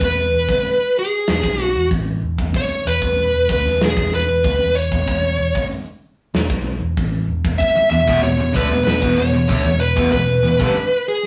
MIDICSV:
0, 0, Header, 1, 8, 480
1, 0, Start_track
1, 0, Tempo, 632244
1, 7, Time_signature, 4, 2, 24, 8
1, 8553, End_track
2, 0, Start_track
2, 0, Title_t, "Lead electric guitar"
2, 0, Program_c, 0, 29
2, 33, Note_on_c, 0, 71, 82
2, 747, Note_off_c, 0, 71, 0
2, 750, Note_on_c, 0, 68, 70
2, 1229, Note_off_c, 0, 68, 0
2, 1229, Note_on_c, 0, 66, 70
2, 1430, Note_off_c, 0, 66, 0
2, 1947, Note_on_c, 0, 73, 91
2, 2179, Note_on_c, 0, 71, 86
2, 2186, Note_off_c, 0, 73, 0
2, 2665, Note_off_c, 0, 71, 0
2, 2674, Note_on_c, 0, 71, 85
2, 2910, Note_off_c, 0, 71, 0
2, 2915, Note_on_c, 0, 68, 82
2, 3143, Note_off_c, 0, 68, 0
2, 3146, Note_on_c, 0, 71, 86
2, 3608, Note_on_c, 0, 73, 80
2, 3633, Note_off_c, 0, 71, 0
2, 4300, Note_off_c, 0, 73, 0
2, 5757, Note_on_c, 0, 76, 92
2, 5990, Note_off_c, 0, 76, 0
2, 5999, Note_on_c, 0, 76, 82
2, 6244, Note_off_c, 0, 76, 0
2, 6247, Note_on_c, 0, 73, 91
2, 6495, Note_off_c, 0, 73, 0
2, 6497, Note_on_c, 0, 71, 79
2, 6704, Note_off_c, 0, 71, 0
2, 6713, Note_on_c, 0, 71, 84
2, 6958, Note_on_c, 0, 73, 78
2, 6968, Note_off_c, 0, 71, 0
2, 7439, Note_on_c, 0, 71, 80
2, 7456, Note_off_c, 0, 73, 0
2, 7665, Note_off_c, 0, 71, 0
2, 7683, Note_on_c, 0, 71, 85
2, 8412, Note_off_c, 0, 71, 0
2, 8415, Note_on_c, 0, 68, 75
2, 8553, Note_off_c, 0, 68, 0
2, 8553, End_track
3, 0, Start_track
3, 0, Title_t, "Distorted electric guitar"
3, 0, Program_c, 1, 30
3, 6009, Note_on_c, 1, 40, 54
3, 6009, Note_on_c, 1, 47, 60
3, 6121, Note_off_c, 1, 40, 0
3, 6124, Note_off_c, 1, 47, 0
3, 6130, Note_on_c, 1, 40, 90
3, 6133, Note_on_c, 1, 47, 100
3, 6235, Note_off_c, 1, 40, 0
3, 6236, Note_off_c, 1, 47, 0
3, 6244, Note_on_c, 1, 40, 58
3, 6245, Note_on_c, 1, 47, 62
3, 6349, Note_off_c, 1, 40, 0
3, 6352, Note_off_c, 1, 47, 0
3, 6358, Note_on_c, 1, 40, 56
3, 6361, Note_on_c, 1, 47, 66
3, 6471, Note_off_c, 1, 47, 0
3, 6474, Note_on_c, 1, 50, 80
3, 6483, Note_on_c, 1, 57, 98
3, 6484, Note_off_c, 1, 40, 0
3, 6594, Note_off_c, 1, 50, 0
3, 6599, Note_off_c, 1, 57, 0
3, 6603, Note_on_c, 1, 47, 67
3, 6605, Note_on_c, 1, 40, 58
3, 6715, Note_off_c, 1, 40, 0
3, 6715, Note_off_c, 1, 47, 0
3, 6724, Note_on_c, 1, 40, 59
3, 6724, Note_on_c, 1, 47, 68
3, 6833, Note_off_c, 1, 47, 0
3, 6834, Note_off_c, 1, 40, 0
3, 6842, Note_on_c, 1, 47, 89
3, 6843, Note_on_c, 1, 40, 84
3, 6951, Note_off_c, 1, 40, 0
3, 6951, Note_off_c, 1, 47, 0
3, 6960, Note_on_c, 1, 40, 57
3, 6960, Note_on_c, 1, 47, 62
3, 7067, Note_off_c, 1, 40, 0
3, 7073, Note_off_c, 1, 47, 0
3, 7076, Note_on_c, 1, 40, 57
3, 7082, Note_on_c, 1, 47, 63
3, 7190, Note_off_c, 1, 47, 0
3, 7193, Note_on_c, 1, 50, 81
3, 7198, Note_on_c, 1, 57, 100
3, 7202, Note_off_c, 1, 40, 0
3, 7313, Note_off_c, 1, 50, 0
3, 7315, Note_off_c, 1, 57, 0
3, 7317, Note_on_c, 1, 40, 55
3, 7322, Note_on_c, 1, 47, 59
3, 7514, Note_off_c, 1, 40, 0
3, 7516, Note_off_c, 1, 47, 0
3, 7559, Note_on_c, 1, 40, 75
3, 7562, Note_on_c, 1, 47, 78
3, 7667, Note_off_c, 1, 40, 0
3, 7672, Note_off_c, 1, 47, 0
3, 7676, Note_on_c, 1, 40, 58
3, 7681, Note_on_c, 1, 47, 60
3, 7873, Note_off_c, 1, 40, 0
3, 7875, Note_off_c, 1, 47, 0
3, 7919, Note_on_c, 1, 40, 55
3, 7919, Note_on_c, 1, 47, 62
3, 8035, Note_off_c, 1, 40, 0
3, 8038, Note_on_c, 1, 43, 83
3, 8039, Note_off_c, 1, 47, 0
3, 8042, Note_on_c, 1, 50, 96
3, 8154, Note_off_c, 1, 43, 0
3, 8156, Note_off_c, 1, 50, 0
3, 8553, End_track
4, 0, Start_track
4, 0, Title_t, "Picked electric bass"
4, 0, Program_c, 2, 34
4, 10, Note_on_c, 2, 28, 64
4, 232, Note_off_c, 2, 28, 0
4, 244, Note_on_c, 2, 28, 70
4, 357, Note_off_c, 2, 28, 0
4, 367, Note_on_c, 2, 31, 85
4, 479, Note_off_c, 2, 31, 0
4, 973, Note_on_c, 2, 28, 73
4, 1083, Note_off_c, 2, 28, 0
4, 1086, Note_on_c, 2, 35, 87
4, 1311, Note_off_c, 2, 35, 0
4, 1332, Note_on_c, 2, 28, 72
4, 1442, Note_off_c, 2, 28, 0
4, 1451, Note_on_c, 2, 33, 85
4, 1674, Note_off_c, 2, 33, 0
4, 1686, Note_on_c, 2, 28, 74
4, 1800, Note_off_c, 2, 28, 0
4, 1808, Note_on_c, 2, 28, 84
4, 1921, Note_off_c, 2, 28, 0
4, 2165, Note_on_c, 2, 28, 72
4, 2279, Note_off_c, 2, 28, 0
4, 2289, Note_on_c, 2, 28, 82
4, 2398, Note_off_c, 2, 28, 0
4, 2403, Note_on_c, 2, 28, 72
4, 2518, Note_off_c, 2, 28, 0
4, 2535, Note_on_c, 2, 28, 77
4, 2645, Note_off_c, 2, 28, 0
4, 2650, Note_on_c, 2, 38, 81
4, 2762, Note_off_c, 2, 38, 0
4, 2765, Note_on_c, 2, 28, 68
4, 2880, Note_off_c, 2, 28, 0
4, 2890, Note_on_c, 2, 28, 73
4, 3002, Note_off_c, 2, 28, 0
4, 3014, Note_on_c, 2, 28, 85
4, 3124, Note_off_c, 2, 28, 0
4, 3133, Note_on_c, 2, 28, 74
4, 3244, Note_off_c, 2, 28, 0
4, 3253, Note_on_c, 2, 28, 71
4, 3362, Note_off_c, 2, 28, 0
4, 3367, Note_on_c, 2, 38, 82
4, 3481, Note_off_c, 2, 38, 0
4, 3489, Note_on_c, 2, 28, 69
4, 3713, Note_off_c, 2, 28, 0
4, 3728, Note_on_c, 2, 28, 83
4, 3841, Note_off_c, 2, 28, 0
4, 3852, Note_on_c, 2, 28, 68
4, 4075, Note_off_c, 2, 28, 0
4, 4089, Note_on_c, 2, 28, 72
4, 4202, Note_off_c, 2, 28, 0
4, 4212, Note_on_c, 2, 31, 83
4, 4323, Note_off_c, 2, 31, 0
4, 4812, Note_on_c, 2, 28, 69
4, 4923, Note_off_c, 2, 28, 0
4, 4932, Note_on_c, 2, 35, 84
4, 5155, Note_off_c, 2, 35, 0
4, 5163, Note_on_c, 2, 28, 66
4, 5278, Note_off_c, 2, 28, 0
4, 5294, Note_on_c, 2, 33, 81
4, 5516, Note_off_c, 2, 33, 0
4, 5525, Note_on_c, 2, 28, 73
4, 5639, Note_off_c, 2, 28, 0
4, 5653, Note_on_c, 2, 28, 76
4, 5763, Note_off_c, 2, 28, 0
4, 6003, Note_on_c, 2, 28, 71
4, 6118, Note_off_c, 2, 28, 0
4, 6127, Note_on_c, 2, 28, 89
4, 6236, Note_off_c, 2, 28, 0
4, 6240, Note_on_c, 2, 28, 73
4, 6350, Note_off_c, 2, 28, 0
4, 6354, Note_on_c, 2, 28, 70
4, 6473, Note_off_c, 2, 28, 0
4, 6485, Note_on_c, 2, 38, 81
4, 6588, Note_off_c, 2, 38, 0
4, 6592, Note_on_c, 2, 28, 72
4, 6706, Note_off_c, 2, 28, 0
4, 6710, Note_on_c, 2, 28, 70
4, 6830, Note_off_c, 2, 28, 0
4, 6847, Note_on_c, 2, 28, 90
4, 6943, Note_off_c, 2, 28, 0
4, 6948, Note_on_c, 2, 28, 75
4, 7069, Note_off_c, 2, 28, 0
4, 7078, Note_on_c, 2, 28, 71
4, 7194, Note_off_c, 2, 28, 0
4, 7204, Note_on_c, 2, 38, 88
4, 7315, Note_off_c, 2, 38, 0
4, 7319, Note_on_c, 2, 28, 74
4, 7546, Note_off_c, 2, 28, 0
4, 7569, Note_on_c, 2, 28, 88
4, 7679, Note_off_c, 2, 28, 0
4, 7683, Note_on_c, 2, 28, 64
4, 7904, Note_off_c, 2, 28, 0
4, 7909, Note_on_c, 2, 28, 74
4, 8028, Note_off_c, 2, 28, 0
4, 8041, Note_on_c, 2, 31, 85
4, 8154, Note_off_c, 2, 31, 0
4, 8553, End_track
5, 0, Start_track
5, 0, Title_t, "Muted distorted electric guitar strokes"
5, 5889, Note_on_c, 9, 29, 50
5, 5965, Note_off_c, 9, 29, 0
5, 8553, End_track
6, 0, Start_track
6, 0, Title_t, "Muted overdriven electric guitar strokes"
6, 5890, Note_on_c, 9, 29, 54
6, 5966, Note_off_c, 9, 29, 0
6, 8553, End_track
7, 0, Start_track
7, 0, Title_t, "Muted picked electric bass strokes"
7, 2042, Note_on_c, 9, 29, 38
7, 2118, Note_off_c, 9, 29, 0
7, 5891, Note_on_c, 9, 29, 36
7, 5967, Note_off_c, 9, 29, 0
7, 8553, End_track
8, 0, Start_track
8, 0, Title_t, "Drums"
8, 7, Note_on_c, 9, 36, 88
8, 11, Note_on_c, 9, 46, 51
8, 83, Note_off_c, 9, 36, 0
8, 87, Note_off_c, 9, 46, 0
8, 369, Note_on_c, 9, 36, 96
8, 445, Note_off_c, 9, 36, 0
8, 487, Note_on_c, 9, 46, 51
8, 563, Note_off_c, 9, 46, 0
8, 967, Note_on_c, 9, 46, 47
8, 971, Note_on_c, 9, 38, 99
8, 1043, Note_off_c, 9, 46, 0
8, 1047, Note_off_c, 9, 38, 0
8, 1089, Note_on_c, 9, 36, 91
8, 1165, Note_off_c, 9, 36, 0
8, 1451, Note_on_c, 9, 36, 92
8, 1454, Note_on_c, 9, 46, 45
8, 1526, Note_off_c, 9, 36, 0
8, 1530, Note_off_c, 9, 46, 0
8, 1810, Note_on_c, 9, 36, 101
8, 1886, Note_off_c, 9, 36, 0
8, 1931, Note_on_c, 9, 36, 88
8, 1935, Note_on_c, 9, 46, 46
8, 2007, Note_off_c, 9, 36, 0
8, 2011, Note_off_c, 9, 46, 0
8, 2291, Note_on_c, 9, 36, 89
8, 2367, Note_off_c, 9, 36, 0
8, 2411, Note_on_c, 9, 46, 44
8, 2487, Note_off_c, 9, 46, 0
8, 2651, Note_on_c, 9, 36, 97
8, 2727, Note_off_c, 9, 36, 0
8, 2779, Note_on_c, 9, 38, 30
8, 2855, Note_off_c, 9, 38, 0
8, 2892, Note_on_c, 9, 46, 44
8, 2896, Note_on_c, 9, 38, 101
8, 2968, Note_off_c, 9, 46, 0
8, 2972, Note_off_c, 9, 38, 0
8, 3013, Note_on_c, 9, 36, 97
8, 3089, Note_off_c, 9, 36, 0
8, 3373, Note_on_c, 9, 36, 95
8, 3378, Note_on_c, 9, 46, 43
8, 3449, Note_off_c, 9, 36, 0
8, 3454, Note_off_c, 9, 46, 0
8, 3734, Note_on_c, 9, 36, 96
8, 3810, Note_off_c, 9, 36, 0
8, 3854, Note_on_c, 9, 36, 90
8, 3855, Note_on_c, 9, 46, 50
8, 3930, Note_off_c, 9, 36, 0
8, 3931, Note_off_c, 9, 46, 0
8, 4214, Note_on_c, 9, 36, 93
8, 4290, Note_off_c, 9, 36, 0
8, 4344, Note_on_c, 9, 46, 47
8, 4420, Note_off_c, 9, 46, 0
8, 4814, Note_on_c, 9, 46, 48
8, 4818, Note_on_c, 9, 38, 94
8, 4890, Note_off_c, 9, 46, 0
8, 4894, Note_off_c, 9, 38, 0
8, 4934, Note_on_c, 9, 36, 98
8, 5010, Note_off_c, 9, 36, 0
8, 5294, Note_on_c, 9, 36, 93
8, 5298, Note_on_c, 9, 46, 46
8, 5370, Note_off_c, 9, 36, 0
8, 5374, Note_off_c, 9, 46, 0
8, 5653, Note_on_c, 9, 36, 100
8, 5729, Note_off_c, 9, 36, 0
8, 5773, Note_on_c, 9, 36, 82
8, 5777, Note_on_c, 9, 46, 47
8, 5849, Note_off_c, 9, 36, 0
8, 5853, Note_off_c, 9, 46, 0
8, 6132, Note_on_c, 9, 36, 91
8, 6208, Note_off_c, 9, 36, 0
8, 6252, Note_on_c, 9, 46, 45
8, 6328, Note_off_c, 9, 46, 0
8, 6489, Note_on_c, 9, 36, 95
8, 6565, Note_off_c, 9, 36, 0
8, 6614, Note_on_c, 9, 38, 30
8, 6690, Note_off_c, 9, 38, 0
8, 6731, Note_on_c, 9, 46, 47
8, 6735, Note_on_c, 9, 38, 94
8, 6807, Note_off_c, 9, 46, 0
8, 6811, Note_off_c, 9, 38, 0
8, 6849, Note_on_c, 9, 36, 93
8, 6925, Note_off_c, 9, 36, 0
8, 7205, Note_on_c, 9, 46, 44
8, 7206, Note_on_c, 9, 36, 89
8, 7281, Note_off_c, 9, 46, 0
8, 7282, Note_off_c, 9, 36, 0
8, 7567, Note_on_c, 9, 36, 94
8, 7643, Note_off_c, 9, 36, 0
8, 7685, Note_on_c, 9, 46, 45
8, 7687, Note_on_c, 9, 36, 87
8, 7761, Note_off_c, 9, 46, 0
8, 7763, Note_off_c, 9, 36, 0
8, 8046, Note_on_c, 9, 36, 92
8, 8122, Note_off_c, 9, 36, 0
8, 8162, Note_on_c, 9, 46, 44
8, 8238, Note_off_c, 9, 46, 0
8, 8528, Note_on_c, 9, 38, 29
8, 8553, Note_off_c, 9, 38, 0
8, 8553, End_track
0, 0, End_of_file